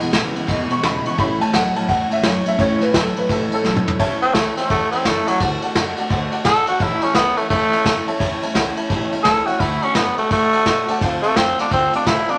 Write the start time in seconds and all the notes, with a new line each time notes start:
Already playing: G#3 B3 E4
0.00 E2 B2 E3 G#3 B3, muted upright bass stroke, ride
0.11 G#1 E2 C#3 E3 G#3 B3 E4, snare, ride
0.34 E2 C#3 E3 G#3 B3 E4, muted upright bass stroke, ride
0.46 E1 E2 B2 E3 G#3 B3 E4, kick, ride
0.70 E2 B2 E3 G#3 B3 E4 C#6, muted upright bass stroke, ride
0.82 E1 E2 C#3 E3 G#3 B3 E4 B5, snare, ride
1.05 E2 C#3 E3 G#3 B3 E4 C#6, muted upright bass stroke, ride
1.17 A1 A2 E3 A3 C#4 E4 B5, kick, ride
1.40 A2 E3 A3 C#4 E4 A5, muted upright bass stroke, ride
1.53 C#2 A2 E3 F#3 A3 C#4 E4 F#5, snare, ride
1.76 A2 F#3 A3 C#4 E4 A5, muted upright bass stroke, ride
1.89 E2 A2 E3 A3 C#4 E4 F#5, kick, ride
2.10 A2 E3 A3 C#4 E4 E5, muted upright bass stroke, ride
2.23 F#2 A2 E3 F#3 A3 C#4 E4 C#5, snare, ride
2.45 A2 F#3 A3 C#4 E4 E5, ride
2.57 E2 A2 E3 A3 C#4 E4 C#5, kick, ride
2.79 A2 E3 A3 C#4 E4 B4, muted upright bass stroke, snare, ride
2.93 C#2 A2 E3 F#3 A3 C#4 E4 A4, kick, snare, ride
3.15 A2 F#3 A3 C#4 E4 B4, muted upright bass stroke, ride
3.28 A1 A2 E3 A3 C#4 E4 A4, kick, ride
3.51 A2 E3 A3 C#4 E4 A4, muted upright bass stroke, ride
3.64 A1 A2 E3 F#3 A3 C#4, snare
3.68 E4
3.76 mid tom
3.86 A2 F#3 A3 C#4 E4, muted upright bass stroke, floor tom
3.99 A1 A2 E3 A3 C#4 E4 C#5 E5 A5, kick, crash
4.21 A3 C4 C#4 E4 C#5 E5 A5, muted upright bass stroke, ride
4.34 C#2 E3 A3 C#4 E4 C#5 E5 A5, snare, ride
4.56 A3 C4 C#4 E4 C#5 E5 A5, muted upright bass stroke, snare, ride
4.69 E2 A2 E3 A3 C#4 E4 E5 F#5, kick, ride
4.92 A3 C4 C#4 E4 C#5 E5 B5, ride
5.05 F#2 E3 A3 C#4 E4 C#5 E5 A5, kick, snare, ride
5.26 F#3 A3 C#4 E4 C#5 E5 A5, muted upright bass stroke, ride
5.40 D2 D3 A3 D4 F#4 D5 F#5 A5, kick, ride
5.62 A3 D4 F#4 D5 F#5 A5, muted upright bass stroke, ride
5.75 F#2 D3 A3 D4 F#4 D5 F#5 A5, snare, ride
5.97 A3 D4 F#4 D5 F#5 A5, ride
6.10 D2 D3 A3 D4 F#4 D5 F#5 A5, kick, ride
6.32 A3 D4 F#4 D5 F#5 A5, ride
6.45 G#1 D3 A3 D4 F#4 A4 D5 F#5 A5, kick, snare, ride
6.67 A3 D4 F#4 D5 F#5 A5, muted upright bass stroke, ride
6.79 A1 A2 E3 A3 C#4 E4 C#5 E5 A5, kick, ride
6.83 E4
7.01 C#4 E4 C#5 E5 A5, ride
7.06 A3
7.14 C#2 E3 A3 B3 C#4 E4 C#5 E5 A5, snare, ride
7.37 A3 C#4 E4 C#5 E5 A5, muted upright bass stroke, ride
7.42 A3
7.49 E2 A2 E3 A3 C#4 E4 C#5 E5 A5, kick, ride
7.71 E4 C#5 E5 A5, muted upright bass stroke, ride
7.75 A3 C#4
7.84 F#2 E3 A3 C#5 E5 A5, kick, snare, ride
7.88 C#4 E4
8.06 A3 C#4 E4 C#5 E5 A5, muted upright bass stroke, ride
8.19 E2 A2 E3 A3 C#4 E4 C#5 E5 A5, kick, ride
8.41 C#4 E4 C#5 E5 A5, muted upright bass stroke, ride
8.46 A3
8.54 C#2 E3 A3 C#4 C#5 E5 F#5, snare, ride
8.58 E4
8.76 A3 C#4 E4 C#5 E5 A5, muted upright bass stroke, ride
8.89 A1 A2 E3 A3 C#4 C#5 E5 A5, kick, ride
8.94 E4
9.10 E4 C#5 E5 A5, ride
9.14 A3 C#4
9.23 C#2 E3 A3 C#4 A4 C#5 E5 B5, snare, ride
9.28 E4
9.46 E4 F#4 C#5 E5 G5, muted upright bass stroke, ride
9.50 A3 C#4
9.59 D2 D3 A3 E4 D5 F#5 A5, kick, ride
9.63 D4 F#4
9.81 C#4 D4 F#4 D5 F#5 A5, ride
9.86 A3
9.95 F#2 D3 A3 B3 D5 F#5 A5, snare, ride
9.99 D4 F#4
10.17 A3 D4 F#4 D5 A5, muted upright bass stroke, ride
10.22 A3
10.30 A2 D3 A3 D4 F#4 D5 F#5 A5, kick, ride
10.52 D4 F#4 D5 F#5 A5, muted upright bass stroke, ride
10.57 A3
10.66 B2 D3 A3 D4 F#4 D5 F#5 A5, kick, snare, ride
10.86 A3 D4 F#4 D5 F#5 A5, muted upright bass stroke, ride
11.01 D2 D3 A3 C4 F4 D5 F5 A5, kick, ride
11.22 A3 C4 F4 D5 F5 A5, muted upright bass stroke, ride
11.34 F2 D3 A3 C4 F4 D5, snare, ride
11.38 F5 A5
11.58 A3 C4 D4 F4 D5 F5 A5, snare, ride
11.69 D2 D3 A3 C4 F4 D5 F5, kick, ride
11.73 C4 A5
11.92 A3 C4 F4 D5 F5 A5, ride
11.96 D4
12.05 G#1 D3 A3 C4 E4 F4 D5 F5 A5, kick, snare, ride
12.28 A3 C4 D4 F4 D5 F5 A5, ride